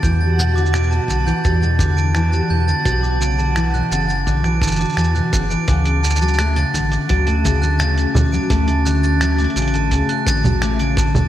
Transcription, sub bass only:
X:1
M:4/4
L:1/8
Q:1/4=85
K:D
V:1 name="Sub bass" clef=bass
E,,3 B,,, E,,3 E,, | B,,,3 F,,, B,,, F,,, E,, F,,, | D,,3 A,,, D,,3 D,, | D,,3 A,,, D,, A,,,3 |]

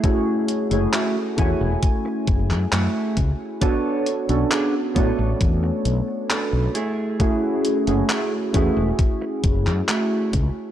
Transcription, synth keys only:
X:1
M:4/4
L:1/16
Q:1/4=67
K:F#m
V:1 name="Synth keys"
[A,CEFG]3 [A,CEFG] z2 [A,CEFg]8- [A,CEFg]2 | [B,DFAc]3 [B,CDFA] z2 [A,B,DFc]8 z2 | [A,CEFG]3 [A,CEFG] z2 [A,CEFG]8- [A,CEFG]2 |]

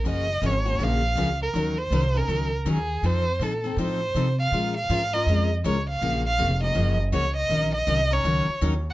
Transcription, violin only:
X:1
M:4/4
L:1/8
Q:"Swing" 1/4=161
K:Gblyd
V:1 name="Violin"
e2 d2 f3 B- | B c2 B2 z A2 | c2 =A2 c3 f- | f f2 e2 z d f- |
f f2 e2 z d e- | e e2 d3 z2 |]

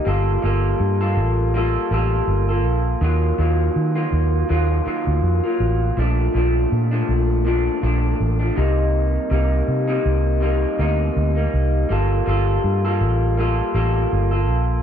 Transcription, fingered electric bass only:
X:1
M:4/4
L:1/16
Q:"Swing 16ths" 1/4=81
K:Bb
V:1 name="Fingered electric bass" clef=bass
G,,,2 G,,,2 G,,2 A,,,4 A,,,2 G,,,2 B,,,2 | E,,2 E,,2 E,2 E,,2 E,,2 z D,, F,, z A,,,2 | B,,,2 B,,,2 B,,2 B,,,4 B,,,2 A,,,2 C,,2- | C,,2 C,,2 C,2 C,,4 D,,2 D,,2 C,,2 |
G,,,2 G,,,2 G,,2 A,,,4 A,,,2 G,,,2 B,,,2 |]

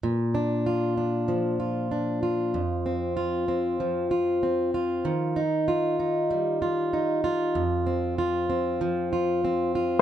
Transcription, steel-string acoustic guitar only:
X:1
M:4/4
L:1/8
Q:"Swing 16ths" 1/4=96
K:Bblyd
V:1 name="Steel-string acoustic guitar"
B,, D F D F, F D F | F,, C F C F, F C F | _E, _E F E G, F E F | F,, C F C F, F C F |]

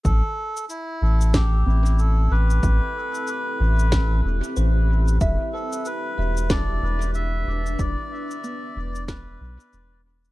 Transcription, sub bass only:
X:1
M:4/4
L:1/8
Q:"Swing 16ths" 1/4=93
K:Am
V:1 name="Sub bass" clef=bass
A,,, z2 A,,,2 A,,,2 A,,, | A,,, z2 A,,,2 E,,, A,,,2 | E,,, z2 E,,,2 E,,,2 E,,, | E,,, z2 E,,,2 B,,, E,,,2 |]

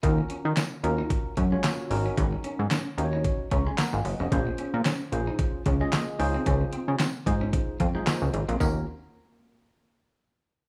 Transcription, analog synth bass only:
X:1
M:4/4
L:1/16
Q:"Swing 16ths" 1/4=112
K:Ebdor
V:1 name="Analog synth bass" clef=bass
E,,2 z E, z2 E,,2 z2 G,,2 z2 A,,,2 | A,,,2 z A,, z2 E,,3 z D,,2 z A,,, G,,, F,,, | B,,,2 z B,, z2 B,,,2 z2 D,,2 z2 D,,2 | D,,2 z D, z2 A,,3 z F,,2 z D,, A,,, B,,, |
E,,2 z12 z2 |]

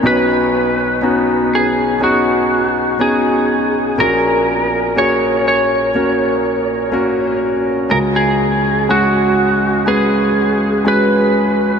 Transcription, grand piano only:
X:1
M:4/4
L:1/8
Q:1/4=61
K:F#
V:1 name="Grand piano"
[B,CDF]2 [B,CDF]2 [B,CDG]2 [B,CDF]2 | [A,CFG]2 [A,CFG]2 [A,CFA]2 [A,CFA]2 | [G,CFG]2 [G,CFG]2 [G,CFB]2 [G,CFG]2 |]
V:2 name="Grand piano" clef=bass
[B,,,B,,]8 | [A,,,A,,]8 | [C,,C,]8 |]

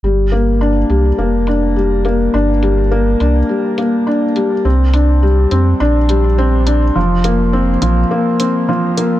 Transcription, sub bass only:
X:1
M:4/4
L:1/8
Q:1/4=104
K:Gm
V:1 name="Sub bass" clef=bass
G,,,3 C,, F,,,4 | G,,,3 C,, z4 | C,,3 F,, B,,,4 | F,,,3 B,,, z4 |]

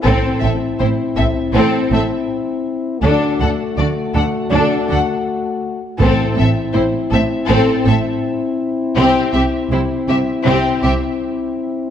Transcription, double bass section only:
X:1
M:4/4
L:1/8
Q:1/4=81
K:Ador
V:1 name="Double bass section" clef=bass
A,,, A,,, A,,, A,,, A,,, A,,, z2 | D,, D,, D,, D,, D,, D,, z2 | A,,, A,,, A,,, A,,, A,,, A,,, z2 | C,, C,, C,, C,, C,, C,, z2 |]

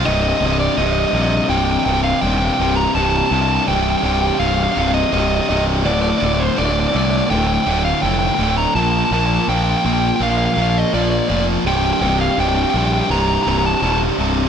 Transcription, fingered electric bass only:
X:1
M:4/4
L:1/8
Q:1/4=83
K:Cdor
V:1 name="Fingered electric bass" clef=bass
C,,, C,,, C,,, B,,, C,,, C,,, E,,, C,,, | C,,, C,, C,,, C,,, C,,, C,,, C,,, C,,, | D,,, D,,, D,,, C,, D,,, D,,, F,,, D,,, | B,,, B,,, B,,, B,,, B,,, B,,, B,,, F,,, |
C,,, C,,, C,,, B,,, C,,, C,,, E,,, C,,, |]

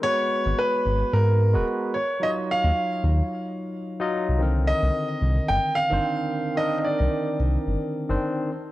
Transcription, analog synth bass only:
X:1
M:4/4
L:1/16
Q:"Swing 16ths" 1/4=110
K:Cphr
V:1 name="Analog synth bass" clef=bass
z3 A,,, z2 A,,, z A,,3 E,,, z4 | z3 E,, z2 E,, z8 C,,- | C,,2 z C,, z2 C,, z G,,, z2 G,,, z4 | z3 C,, z2 C,, z G,,, z2 G,,, z4 |]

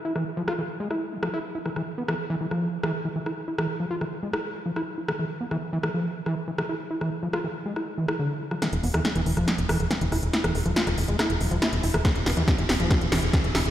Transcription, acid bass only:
X:1
M:4/4
L:1/16
Q:1/4=140
K:none
V:1 name="Acid bass" clef=bass
E E, z F, F E, z ^G, E2 E, F, E z E E, | E, z B, E, z E, E, F,2 E, E, z E, E, E z | E E, z F, F E, z ^G, E2 E, F, E z E E, | E, z B, E, z E, E, F,2 E, E, z E, E, E z |
E E, z F, F E, z ^G, E z E, E D,2 B, F, | E, z B, E, z E, E, F,2 E, E, z E, E, E z | E E, z F, F E, z ^G, E2 E, F, E z E E, | E, z B, E, z E, E, F,2 E, E, z E, E, E z |]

